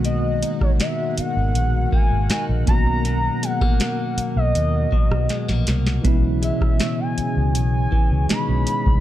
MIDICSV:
0, 0, Header, 1, 8, 480
1, 0, Start_track
1, 0, Key_signature, 5, "major"
1, 0, Tempo, 750000
1, 31, Time_signature, 4, 2, 24, 8
1, 5761, End_track
2, 0, Start_track
2, 0, Title_t, "Soft synth lead"
2, 0, Program_c, 0, 80
2, 31, Note_on_c, 0, 75, 97
2, 366, Note_off_c, 0, 75, 0
2, 398, Note_on_c, 0, 73, 80
2, 450, Note_off_c, 0, 73, 0
2, 518, Note_on_c, 0, 76, 97
2, 738, Note_off_c, 0, 76, 0
2, 760, Note_on_c, 0, 78, 104
2, 1210, Note_off_c, 0, 78, 0
2, 1238, Note_on_c, 0, 80, 109
2, 1458, Note_off_c, 0, 80, 0
2, 1478, Note_on_c, 0, 80, 99
2, 1567, Note_off_c, 0, 80, 0
2, 1716, Note_on_c, 0, 82, 120
2, 2198, Note_on_c, 0, 78, 111
2, 2208, Note_off_c, 0, 82, 0
2, 2793, Note_off_c, 0, 78, 0
2, 2796, Note_on_c, 0, 75, 98
2, 3608, Note_off_c, 0, 75, 0
2, 4117, Note_on_c, 0, 76, 96
2, 4478, Note_on_c, 0, 80, 102
2, 4487, Note_off_c, 0, 76, 0
2, 4834, Note_off_c, 0, 80, 0
2, 4839, Note_on_c, 0, 80, 108
2, 5289, Note_off_c, 0, 80, 0
2, 5321, Note_on_c, 0, 83, 104
2, 5761, Note_off_c, 0, 83, 0
2, 5761, End_track
3, 0, Start_track
3, 0, Title_t, "Analog synth pad"
3, 0, Program_c, 1, 89
3, 0, Note_on_c, 1, 56, 82
3, 0, Note_on_c, 1, 66, 69
3, 0, Note_on_c, 1, 70, 80
3, 0, Note_on_c, 1, 78, 86
3, 1686, Note_off_c, 1, 66, 0
3, 1692, Note_off_c, 1, 56, 0
3, 1711, Note_on_c, 1, 47, 78
3, 1712, Note_on_c, 1, 54, 89
3, 3845, Note_off_c, 1, 70, 0
3, 3845, Note_off_c, 1, 78, 0
3, 3850, Note_off_c, 1, 54, 0
3, 3873, Note_on_c, 1, 68, 70
3, 3874, Note_on_c, 1, 49, 73
3, 3874, Note_on_c, 1, 73, 82
3, 5761, Note_off_c, 1, 47, 0
3, 5761, Note_off_c, 1, 49, 0
3, 5761, Note_off_c, 1, 68, 0
3, 5761, Note_off_c, 1, 73, 0
3, 5761, End_track
4, 0, Start_track
4, 0, Title_t, "Tine electric piano"
4, 0, Program_c, 2, 4
4, 0, Control_c, 2, 64, 127
4, 0, Note_on_c, 2, 51, 81
4, 0, Note_on_c, 2, 56, 66
4, 0, Note_on_c, 2, 58, 70
4, 0, Note_on_c, 2, 59, 73
4, 0, Note_on_c, 2, 66, 88
4, 1674, Note_off_c, 2, 51, 0
4, 1684, Note_off_c, 2, 58, 0
4, 1689, Note_off_c, 2, 59, 0
4, 1694, Note_off_c, 2, 66, 0
4, 1694, Note_on_c, 2, 51, 63
4, 1701, Note_off_c, 2, 56, 0
4, 1703, Note_on_c, 2, 58, 60
4, 1714, Note_on_c, 2, 59, 60
4, 1718, Control_c, 2, 64, 0
4, 1723, Note_on_c, 2, 61, 60
4, 1732, Note_on_c, 2, 66, 73
4, 1844, Control_c, 2, 64, 127
4, 3597, Note_off_c, 2, 51, 0
4, 3602, Note_off_c, 2, 58, 0
4, 3607, Note_off_c, 2, 59, 0
4, 3611, Note_off_c, 2, 61, 0
4, 3616, Note_off_c, 2, 66, 0
4, 3852, Note_on_c, 2, 52, 83
4, 3861, Note_on_c, 2, 56, 77
4, 3871, Note_on_c, 2, 59, 77
4, 3879, Control_c, 2, 64, 0
4, 3882, Note_on_c, 2, 61, 75
4, 3889, Note_on_c, 2, 64, 91
4, 3983, Control_c, 2, 64, 127
4, 5276, Note_off_c, 2, 52, 0
4, 5281, Note_off_c, 2, 56, 0
4, 5285, Note_off_c, 2, 59, 0
4, 5291, Note_off_c, 2, 61, 0
4, 5294, Note_off_c, 2, 64, 0
4, 5302, Note_on_c, 2, 51, 52
4, 5306, Note_on_c, 2, 56, 46
4, 5310, Note_on_c, 2, 59, 44
4, 5315, Note_on_c, 2, 61, 44
4, 5320, Note_on_c, 2, 63, 55
4, 5761, Note_off_c, 2, 51, 0
4, 5761, Note_off_c, 2, 56, 0
4, 5761, Note_off_c, 2, 59, 0
4, 5761, Note_off_c, 2, 61, 0
4, 5761, Note_off_c, 2, 63, 0
4, 5761, End_track
5, 0, Start_track
5, 0, Title_t, "Clean electric guitar"
5, 0, Program_c, 3, 27
5, 0, Note_on_c, 3, 54, 60
5, 32, Note_on_c, 3, 47, 86
5, 273, Note_on_c, 3, 63, 65
5, 1233, Note_on_c, 3, 58, 60
5, 1469, Note_off_c, 3, 63, 0
5, 1472, Note_on_c, 3, 63, 62
5, 1551, Note_off_c, 3, 54, 0
5, 1704, Note_off_c, 3, 47, 0
5, 1712, Note_on_c, 3, 47, 80
5, 1943, Note_off_c, 3, 47, 0
5, 1951, Note_on_c, 3, 47, 87
5, 1970, Note_off_c, 3, 58, 0
5, 2193, Note_on_c, 3, 56, 64
5, 2312, Note_off_c, 3, 56, 0
5, 2312, Note_on_c, 3, 58, 52
5, 3151, Note_on_c, 3, 54, 59
5, 3390, Note_off_c, 3, 58, 0
5, 3392, Note_on_c, 3, 56, 64
5, 3510, Note_off_c, 3, 56, 0
5, 3510, Note_on_c, 3, 58, 53
5, 3712, Note_off_c, 3, 63, 0
5, 3862, Note_off_c, 3, 47, 0
5, 3869, Note_on_c, 3, 47, 86
5, 3918, Note_off_c, 3, 58, 0
5, 3919, Note_off_c, 3, 54, 0
5, 4109, Note_on_c, 3, 56, 65
5, 5069, Note_on_c, 3, 52, 61
5, 5300, Note_off_c, 3, 56, 0
5, 5308, Note_on_c, 3, 56, 61
5, 5761, Note_off_c, 3, 47, 0
5, 5761, Note_off_c, 3, 52, 0
5, 5761, Note_off_c, 3, 56, 0
5, 5761, End_track
6, 0, Start_track
6, 0, Title_t, "Fingered electric bass"
6, 0, Program_c, 4, 33
6, 0, Note_on_c, 4, 35, 95
6, 270, Note_off_c, 4, 35, 0
6, 874, Note_on_c, 4, 32, 87
6, 995, Note_off_c, 4, 32, 0
6, 995, Note_on_c, 4, 34, 99
6, 1184, Note_off_c, 4, 34, 0
6, 1354, Note_on_c, 4, 32, 100
6, 1448, Note_off_c, 4, 32, 0
6, 1594, Note_on_c, 4, 34, 82
6, 1688, Note_off_c, 4, 34, 0
6, 1713, Note_on_c, 4, 35, 95
6, 2094, Note_off_c, 4, 35, 0
6, 2793, Note_on_c, 4, 35, 99
6, 2888, Note_off_c, 4, 35, 0
6, 2914, Note_on_c, 4, 39, 98
6, 3104, Note_off_c, 4, 39, 0
6, 3272, Note_on_c, 4, 35, 99
6, 3367, Note_off_c, 4, 35, 0
6, 3513, Note_on_c, 4, 34, 93
6, 3608, Note_off_c, 4, 34, 0
6, 3634, Note_on_c, 4, 36, 90
6, 3824, Note_off_c, 4, 36, 0
6, 3870, Note_on_c, 4, 35, 118
6, 4157, Note_off_c, 4, 35, 0
6, 4714, Note_on_c, 4, 37, 86
6, 4835, Note_off_c, 4, 37, 0
6, 4835, Note_on_c, 4, 35, 97
6, 5024, Note_off_c, 4, 35, 0
6, 5195, Note_on_c, 4, 37, 93
6, 5289, Note_off_c, 4, 37, 0
6, 5432, Note_on_c, 4, 35, 88
6, 5527, Note_off_c, 4, 35, 0
6, 5673, Note_on_c, 4, 36, 94
6, 5761, Note_off_c, 4, 36, 0
6, 5761, End_track
7, 0, Start_track
7, 0, Title_t, "Muted fingered electric bass strokes"
7, 754, Note_on_c, 9, 29, 49
7, 818, Note_off_c, 9, 29, 0
7, 1473, Note_on_c, 9, 29, 51
7, 1537, Note_off_c, 9, 29, 0
7, 2671, Note_on_c, 9, 29, 48
7, 2735, Note_off_c, 9, 29, 0
7, 4594, Note_on_c, 9, 29, 46
7, 4658, Note_off_c, 9, 29, 0
7, 5761, End_track
8, 0, Start_track
8, 0, Title_t, "Drums"
8, 29, Note_on_c, 9, 42, 74
8, 93, Note_off_c, 9, 42, 0
8, 272, Note_on_c, 9, 42, 80
8, 336, Note_off_c, 9, 42, 0
8, 391, Note_on_c, 9, 36, 95
8, 393, Note_on_c, 9, 37, 64
8, 455, Note_off_c, 9, 36, 0
8, 457, Note_off_c, 9, 37, 0
8, 510, Note_on_c, 9, 42, 75
8, 515, Note_on_c, 9, 38, 119
8, 574, Note_off_c, 9, 42, 0
8, 579, Note_off_c, 9, 38, 0
8, 752, Note_on_c, 9, 42, 79
8, 816, Note_off_c, 9, 42, 0
8, 994, Note_on_c, 9, 42, 80
8, 1058, Note_off_c, 9, 42, 0
8, 1231, Note_on_c, 9, 36, 96
8, 1295, Note_off_c, 9, 36, 0
8, 1470, Note_on_c, 9, 42, 66
8, 1475, Note_on_c, 9, 38, 111
8, 1534, Note_off_c, 9, 42, 0
8, 1539, Note_off_c, 9, 38, 0
8, 1710, Note_on_c, 9, 42, 66
8, 1712, Note_on_c, 9, 36, 108
8, 1774, Note_off_c, 9, 42, 0
8, 1776, Note_off_c, 9, 36, 0
8, 1952, Note_on_c, 9, 42, 72
8, 2016, Note_off_c, 9, 42, 0
8, 2195, Note_on_c, 9, 42, 79
8, 2259, Note_off_c, 9, 42, 0
8, 2312, Note_on_c, 9, 36, 97
8, 2316, Note_on_c, 9, 37, 68
8, 2376, Note_off_c, 9, 36, 0
8, 2380, Note_off_c, 9, 37, 0
8, 2431, Note_on_c, 9, 42, 80
8, 2436, Note_on_c, 9, 38, 123
8, 2495, Note_off_c, 9, 42, 0
8, 2500, Note_off_c, 9, 38, 0
8, 2674, Note_on_c, 9, 42, 76
8, 2738, Note_off_c, 9, 42, 0
8, 2913, Note_on_c, 9, 42, 77
8, 2977, Note_off_c, 9, 42, 0
8, 3150, Note_on_c, 9, 36, 87
8, 3214, Note_off_c, 9, 36, 0
8, 3274, Note_on_c, 9, 37, 93
8, 3338, Note_off_c, 9, 37, 0
8, 3388, Note_on_c, 9, 42, 65
8, 3394, Note_on_c, 9, 38, 59
8, 3452, Note_off_c, 9, 42, 0
8, 3458, Note_off_c, 9, 38, 0
8, 3514, Note_on_c, 9, 38, 64
8, 3578, Note_off_c, 9, 38, 0
8, 3628, Note_on_c, 9, 42, 67
8, 3634, Note_on_c, 9, 38, 89
8, 3692, Note_off_c, 9, 42, 0
8, 3698, Note_off_c, 9, 38, 0
8, 3754, Note_on_c, 9, 38, 92
8, 3818, Note_off_c, 9, 38, 0
8, 3869, Note_on_c, 9, 36, 114
8, 3870, Note_on_c, 9, 42, 73
8, 3933, Note_off_c, 9, 36, 0
8, 3934, Note_off_c, 9, 42, 0
8, 4113, Note_on_c, 9, 42, 76
8, 4177, Note_off_c, 9, 42, 0
8, 4230, Note_on_c, 9, 36, 94
8, 4235, Note_on_c, 9, 37, 67
8, 4294, Note_off_c, 9, 36, 0
8, 4299, Note_off_c, 9, 37, 0
8, 4349, Note_on_c, 9, 42, 76
8, 4354, Note_on_c, 9, 38, 111
8, 4413, Note_off_c, 9, 42, 0
8, 4418, Note_off_c, 9, 38, 0
8, 4593, Note_on_c, 9, 42, 76
8, 4657, Note_off_c, 9, 42, 0
8, 4832, Note_on_c, 9, 42, 84
8, 4896, Note_off_c, 9, 42, 0
8, 5070, Note_on_c, 9, 36, 88
8, 5134, Note_off_c, 9, 36, 0
8, 5308, Note_on_c, 9, 42, 64
8, 5314, Note_on_c, 9, 38, 111
8, 5372, Note_off_c, 9, 42, 0
8, 5378, Note_off_c, 9, 38, 0
8, 5547, Note_on_c, 9, 42, 69
8, 5611, Note_off_c, 9, 42, 0
8, 5672, Note_on_c, 9, 36, 102
8, 5736, Note_off_c, 9, 36, 0
8, 5761, End_track
0, 0, End_of_file